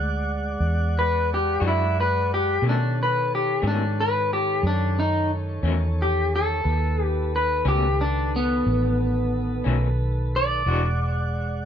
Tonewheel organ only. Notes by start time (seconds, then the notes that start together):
Already playing: G#3 D5 F#5
2.63 D#3 A4 C#5
6.64 D#3 A4 B4
10.67 G#3 D5 F#5